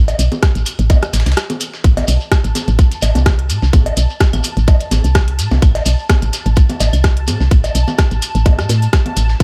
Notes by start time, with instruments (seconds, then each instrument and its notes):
Already playing: fm bass A1
0.08 open hi-hat, cowbell, shekere
0.19 fm bass B1, closed hi-hat, open hi-hat, shekere
0.32 closed hi-hat, low bongo, shekere
0.43 kick, cross-stick, snare, closed hi-hat, shekere
0.55 fm bass A1, closed hi-hat, shekere
0.66 closed hi-hat, open hi-hat, claves, shekere
0.79 fm bass A1, closed hi-hat, shekere
0.90 kick, closed hi-hat, cowbell, low bongo, shekere
1.02 cross-stick, closed hi-hat, shekere
1.13 fm bass A1, snare, closed hi-hat, open hi-hat, shekere
1.20 snare, closed hi-hat
1.26 fm bass C2, snare, closed hi-hat, open hi-hat, shekere
1.32 snare, closed hi-hat
1.37 cross-stick, snare, closed hi-hat, shekere
1.50 closed hi-hat, low bongo, shekere
1.60 closed hi-hat, open hi-hat, shekere
1.74 snare, shekere
1.84 fm bass A1, synth texture A5, kick, closed hi-hat, shekere
1.97 snare, open hi-hat, cowbell, low bongo
2.08 fm bass B1, open hi-hat, shekere
2.21 shekere
2.32 kick, cross-stick, snare, closed hi-hat, shekere
2.44 fm bass A1, closed hi-hat, shekere
2.55 snare, closed hi-hat, open hi-hat, low bongo, shekere
2.68 fm bass A1, closed hi-hat, shekere
2.79 kick, closed hi-hat, shekere
2.92 closed hi-hat, shekere
3.02 fm bass A1, snare, closed hi-hat, open hi-hat, cowbell, claves, shekere
3.15 fm bass C2, open hi-hat, low bongo, shekere
3.26 kick, cross-stick, snare, closed hi-hat, shekere
3.39 closed hi-hat
3.50 fm bass A2, closed hi-hat, open hi-hat, shekere
3.62 fm bass C2, snare, shekere
3.73 fm bass A1, kick, closed hi-hat, low bongo, shekere
3.86 open hi-hat, cowbell
3.97 fm bass B1, closed hi-hat, open hi-hat, shekere
4.10 shekere
4.20 kick, cross-stick, snare, closed hi-hat, shekere
4.33 fm bass A1, closed hi-hat, low bongo, claves, shekere
4.44 closed hi-hat, open hi-hat, shekere
4.57 fm bass A1, closed hi-hat, shekere
4.67 kick, closed hi-hat, cowbell, shekere
4.80 closed hi-hat, shekere
4.91 fm bass A1, snare, closed hi-hat, open hi-hat, low bongo, shekere
5.04 fm bass C2, open hi-hat, shekere
5.15 kick, cross-stick, snare, closed hi-hat, shekere
5.28 closed hi-hat
5.39 fm bass A2, closed hi-hat, open hi-hat, shekere
5.51 fm bass C2, snare, low bongo, shekere
5.62 fm bass A1, kick, closed hi-hat, claves, shekere
5.75 snare, open hi-hat, cowbell
5.86 fm bass B1, open hi-hat, shekere
5.99 shekere
6.09 kick, cross-stick, snare, closed hi-hat, low bongo, shekere
6.22 fm bass A1, closed hi-hat, shekere
6.33 snare, closed hi-hat, open hi-hat, shekere
6.46 fm bass A1, closed hi-hat, shekere
6.56 kick, closed hi-hat, shekere
6.69 closed hi-hat, low bongo, shekere
6.80 fm bass A1, snare, closed hi-hat, open hi-hat, cowbell, shekere
6.93 fm bass C2, open hi-hat, claves, shekere
7.04 kick, cross-stick, snare, closed hi-hat, shekere
7.17 closed hi-hat
7.27 fm bass A2, closed hi-hat, open hi-hat, low bongo, shekere
7.40 fm bass C2, snare, shekere
7.51 fm bass A1, kick, closed hi-hat, shekere
7.64 open hi-hat, cowbell, shekere
7.75 fm bass B1, closed hi-hat, open hi-hat, shekere
7.88 low bongo, shekere
7.98 kick, cross-stick, snare, closed hi-hat, shekere
8.11 fm bass A1, closed hi-hat, shekere
8.22 closed hi-hat, open hi-hat, claves, shekere
8.35 fm bass A1, closed hi-hat, shekere
8.45 kick, closed hi-hat, cowbell, low bongo, shekere
8.59 fm bass A2, cross-stick, closed hi-hat, shekere
8.69 fm bass A2, snare, closed hi-hat, open hi-hat, shekere
8.82 open hi-hat, shekere
8.93 kick, cross-stick, snare, closed hi-hat, shekere
9.06 closed hi-hat, low bongo
9.17 fm bass A1, closed hi-hat, open hi-hat, shekere
9.29 snare, shekere
9.40 fm bass A1, kick, closed hi-hat, shekere